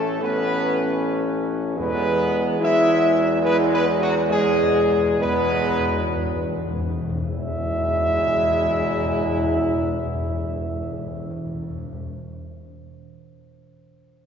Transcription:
Already playing: A1 E3 A3 C#4 A4
0.21 E3 B3 C#4 B4
1.78 E2 F#3 G#3 B3 B4
2.60 F#3 G#3 E4 E5
3.42 F#3 G#3 B3 B4
3.72 B3 B4
3.99 F#3 F#4
4.28 E2 F#3 G#3 G#4
4.38 E2
4.46 E2
4.55 E2
4.63 E2
4.71 E2
4.80 E2
4.89 E2
4.98 E2
5.07 E2
5.15 E2
5.19 F#3 G#3 B3 B4
5.25 E2
5.33 E2
5.43 E2
5.52 E2
5.61 E2
5.70 E2
5.80 E2
5.89 E2
5.98 E2
6.08 E2
6.17 E2
6.27 E2
6.36 E2
6.46 E2
6.57 E2
6.68 E2
6.78 E2
6.89 E2
6.99 E2
7.09 E2
7.26 E2 F#3 G#3 E4 E5
7.34 E2
7.41 E2
7.49 E2
7.57 E2
7.64 E2
7.72 E2
7.80 E2
7.87 E2
7.94 E2
8.03 E2
8.11 E2
8.19 E2
8.27 E2
8.35 E2
8.43 E2
8.51 E2
8.59 E2
8.66 E2
8.75 E2
8.82 E2
8.90 E2
8.98 E2
9.05 E2
9.13 E2
9.21 E2
9.29 E2
9.37 E2
9.44 E2
9.52 E2
9.59 E2
9.67 E2
9.75 E2
9.83 E2
9.91 E2
9.99 E2
10.07 E2
10.15 E2
10.22 E2
10.30 E2
10.37 E2
10.45 E2
10.52 E2
10.60 E2
10.68 E2
10.75 E2
10.83 E2
10.90 E2
10.98 E2
11.07 E2
11.14 E2
11.22 E2
11.30 E2
11.38 E2
11.46 E2
11.54 E2
11.62 E2
11.70 E2
11.78 E2
11.86 E2
11.93 E2

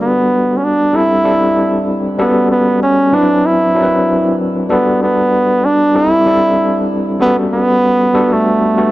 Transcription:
Already playing: G3 B3 D4 F#4 A4
0.01 B3
0.57 C#4
0.64 D4
0.93 G3 C4 D4 E4 A4
1.24 G3 C4 D4 E4 A4
2.18 G3 B3 C#4 F#4 A4
2.51 B3
2.83 C#4
3.12 F#3 C4 D4 E4 B4
3.46 E4
3.75 F#3 C4 D4 E4 A#4
3.83 B4
4.69 G3 B3 D4 F#4 A4
5.03 B3
5.65 D4
5.95 G3 C4 D4 E4 A4
6.26 G3 C4 D4 E4 A4
7.20 G3 B3 C#4 F#4 A4
7.53 B3
8.14 G3 B3 D4 F#4 A4
8.33 A3
8.77 G3 B3 D4 F#4 A4

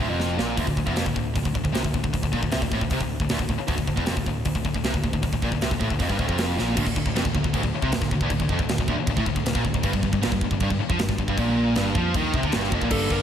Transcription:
0.10 F1 F2
0.20 snare
0.38 A#1 A#2, snare
0.57 D1 D2, kick, open hi-hat
0.67 D1 D2, kick
0.77 D1 D2, kick
0.87 E1 E2, kick
0.96 F1 F2, snare, open hi-hat
1.06 D1 D2, kick
1.16 D1 D2, kick
1.36 D1 D2, kick, open hi-hat
1.45 D1 D2, kick
1.55 D1 D2, kick
1.64 D1 D2, kick
1.74 C2 C3, snare, open hi-hat
1.84 D1 D2, kick
1.94 D1 D2, kick
2.03 D1 D2, kick
2.13 D1 D2, kick, open hi-hat
2.23 D1 D2, kick
2.32 A#1 A#2, kick
2.42 D1 D2, kick
2.52 C2 C3, snare, open hi-hat
2.62 D1 D2, kick
2.71 A1 A2, kick
2.81 D1 D2, kick
2.90 C2 C3, kick, open hi-hat
3.01 D1 D2, kick
3.20 D1 D2, kick
3.29 D1 D2, snare, open hi-hat
3.39 D1 D2, kick
3.49 D1 D2, kick
3.58 muted distorted electric guitar stroke, muted picked electric bass stroke
3.68 D1 D2, kick, open hi-hat
3.78 D1 D2, kick
3.87 D1 D2, kick
3.97 E1 E2, kick
4.06 F1 F2, snare, open hi-hat
4.17 D1 D2, kick
4.26 D1 D2, kick
4.45 D1 D2, kick, open hi-hat
4.55 D1 D2, kick
4.65 D1 D2, kick
4.74 D1 D2, kick
4.84 C2 C3, snare, open hi-hat
4.94 D1 D2, kick
5.04 D1 D2, kick
5.13 D1 D2, kick
5.22 D1 D2, kick, open hi-hat
5.33 D1 D2, kick
5.42 A#1 A#2, kick
5.52 D1 D2, kick
5.61 C2 C3, snare, open hi-hat
5.71 D1 D2, kick
5.79 A1 A2, kick
5.84 A2
5.90 D1 D2, kick
5.99 F1 F2, kick, open hi-hat
6.09 G1 G2, kick
6.19 D1 D2, kick
6.29 F1 F2, kick
6.38 snare, open hi-hat
6.59 A#1 A#2, snare
6.77 D1 D2, kick, crash
6.87 D1 D2, kick
6.96 D1 D2, kick
7.06 D1 D2, kick
7.16 F1 F2, snare, crash
7.25 D1 D2, kick
7.35 D1 D2, kick
7.44 D1 D2, kick
7.54 D1 D2, kick, crash
7.63 D1 D2, kick
7.74 muted picked electric bass stroke, muted distorted electric guitar stroke
7.82 C2 C3, kick
7.92 D1 D2, snare, crash
8.01 D1 D2, kick, snare
8.11 D1 D2, kick
8.21 D1 D2, kick
8.30 D1 D2, kick, crash
8.39 D1 D2, kick
8.49 F1 F2, kick
8.59 D1 D2, kick
8.69 D1 D2, snare, crash
8.78 D1 D2, kick
8.88 D1 D2, kick
8.99 muted picked electric bass stroke, muted distorted electric guitar stroke
9.07 D1 D2, kick, crash
9.17 A1 A2, kick
9.26 D1 D2, kick
9.36 D1 D2, kick
9.46 D1 D2, snare, crash
9.55 A#1 A#2, kick
9.64 D1 D2, kick
9.74 D1 D2, kick
9.83 G1 G2, kick, crash
9.93 G1 G2, kick
10.03 G1 G2, kick
10.13 G1 G2, kick
10.22 A#1 A#2, snare, crash
10.32 G1 G2, kick
10.41 G1 G2, kick
10.51 G1 G2, kick
10.60 G1 G2, kick, crash
10.70 G1 G2, kick
10.80 muted distorted electric guitar stroke, muted picked electric bass stroke
10.90 F2 F3, kick
10.99 G1 G2, snare, crash
11.09 G1 G2, kick, snare
11.18 G1 G2, kick
11.28 G1 G2, kick
11.37 A#1 A#2, kick, crash
11.75 G1 G2, snare, crash
11.95 F2 F3, kick
12.14 D#2 D#3, kick, crash
12.34 C2 C3, kick
12.43 D2 D3, kick
12.52 G1, snare, crash
12.56 G2
12.63 snare
12.72 F1 F2, kick
12.81 A#1 A#2, kick
12.91 G1 G2 D3 G3 A#3 D4 G4 A4, kick, crash
13.10 G1 G2 D3 G3 A#4, kick

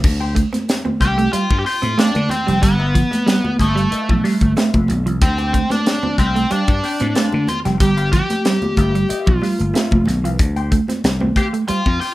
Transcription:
0.04 D2, kick, crash
0.20 G4 C5 G5, muted clean electric guitar stroke, muted conga
0.35 A3, muted clean electric guitar stroke, kick, closed hi-hat
0.53 C4, muted clean electric guitar stroke, snare, closed hi-hat, high conga
0.68 muted clean electric guitar stroke, snare, closed hi-hat, muted conga
0.85 C4, muted clean electric guitar stroke, high conga, low conga
1.00 C2 G4 C5 F5, muted clean electric guitar stroke, kick, closed hi-hat, high conga
1.18 A3, muted clean electric guitar stroke, closed hi-hat
1.33 G3 F4 G4 C5 F5, muted slap bass stroke, closed hi-hat, muted conga
1.50 G2, muted clean electric guitar stroke, kick, muted conga
1.59 G4
1.65 F4 G4 C5 G5, muted clean electric guitar stroke, snare, open hi-hat
1.82 A2 C4, closed hi-hat, high conga
1.98 A3 D4 G4 C5 F5, snare, closed hi-hat
2.15 D3, muted clean electric guitar stroke, closed hi-hat, muted conga, high conga
2.29 C4, muted clean electric guitar stroke, closed hi-hat, low conga
2.47 F1 G3 G4 C5 G5, closed hi-hat
2.62 G1 G3 B3, muted clean electric guitar stroke, kick, closed hi-hat
2.79 F4 B4 F5, muted conga
2.94 F3, muted clean electric guitar stroke, kick, closed hi-hat
3.12 muted clean electric guitar stroke, snare, closed hi-hat, high conga
3.26 G3, muted clean electric guitar stroke, snare, closed hi-hat, muted conga
3.44 muted clean electric guitar stroke, muted conga, high conga, low conga
3.59 G1 A3 F4 B4 E5, muted clean electric guitar stroke, kick, closed hi-hat, high conga
3.75 G3, muted clean electric guitar stroke, closed hi-hat
3.91 F4 B4 E5, muted clean electric guitar stroke, muted slap bass stroke, closed hi-hat
4.09 B1 F3, muted clean electric guitar stroke, kick
4.24 G3 F4 B4 F5, snare, open hi-hat
4.41 G1, muted clean electric guitar stroke, kick, closed hi-hat, high conga
4.56 A3 F4 B4 E5, snare, closed hi-hat, muted conga
4.74 F1, kick, closed hi-hat, muted conga, high conga
4.88 B1, muted clean electric guitar stroke, closed hi-hat, low conga
5.06 C2 F3, muted clean electric guitar stroke, closed hi-hat
5.22 D2 C4, muted clean electric guitar stroke, kick, closed hi-hat
5.38 G4 C5 G5, muted clean electric guitar stroke, closed hi-hat, muted conga
5.53 A3, muted clean electric guitar stroke, kick, closed hi-hat
5.70 C4 D4, muted clean electric guitar stroke, snare, closed hi-hat, high conga
5.86 muted clean electric guitar stroke, snare, closed hi-hat
6.03 C4, muted clean electric guitar stroke, high conga, low conga
6.18 C2 C4 G4 C5 F5, muted clean electric guitar stroke, kick, closed hi-hat, high conga
6.35 A3, muted clean electric guitar stroke, closed hi-hat
6.51 G3 D4 G4 C5 F5, muted slap bass stroke, closed hi-hat, muted conga
6.68 G2, muted clean electric guitar stroke, kick, closed hi-hat, muted conga
6.83 G4 C5 G5, muted clean electric guitar stroke, snare, open hi-hat
7.00 A2 C4, muted clean electric guitar stroke, closed hi-hat, high conga
7.15 A3 G4 C5 F5, snare, closed hi-hat
7.32 D3, muted clean electric guitar stroke, muted conga, high conga
7.47 F4, muted clean electric guitar stroke, closed hi-hat, low conga
7.65 F1 G3 G4 C5 G5, snare, closed hi-hat
7.80 G1 G3 G4, kick, closed hi-hat, muted conga
7.97 F4 B4 F5, closed hi-hat
8.13 F3 G4, muted clean electric guitar stroke, kick, closed hi-hat
8.30 muted clean electric guitar stroke, snare, closed hi-hat, high conga
8.45 G3, muted clean electric guitar stroke, snare, closed hi-hat, muted conga
8.62 muted clean electric guitar stroke, closed hi-hat, high conga, low conga
8.76 G1 F4 B4 E5, muted clean electric guitar stroke, kick, closed hi-hat, high conga
8.95 G3, muted clean electric guitar stroke, closed hi-hat
9.09 F4 B4 E5, muted clean electric guitar stroke, muted slap bass stroke, closed hi-hat, muted conga
9.26 B1 F3, muted clean electric guitar stroke, kick, muted conga
9.37 F4
9.41 G3 F4 B4 F5, snare, open hi-hat, high conga
9.58 G1, closed hi-hat, high conga
9.74 A3 F4 B4 E5, snare, closed hi-hat, muted conga
9.91 F1, kick, muted conga, high conga
10.05 B1, muted clean electric guitar stroke, snare, closed hi-hat, low conga
10.24 C2 F3 F4 B4 F5, closed hi-hat
10.38 D2, kick, closed hi-hat, muted conga
10.56 G4 C5 G5, muted clean electric guitar stroke, closed hi-hat, muted conga
10.71 A3, muted clean electric guitar stroke, kick, closed hi-hat
10.88 C4, muted clean electric guitar stroke, snare, closed hi-hat, high conga
11.04 C2, muted clean electric guitar stroke, snare, closed hi-hat
11.20 C4, muted clean electric guitar stroke, muted conga, high conga, low conga
11.36 G4 C5 F5, muted clean electric guitar stroke, kick, closed hi-hat, high conga
11.53 A3, muted clean electric guitar stroke, closed hi-hat
11.68 G3 F4 G4 C5 F5, muted slap bass stroke, closed hi-hat, muted conga
11.86 F2, muted clean electric guitar stroke, kick, muted conga
12.00 F4 G4 C5 G5, muted clean electric guitar stroke, snare, open hi-hat

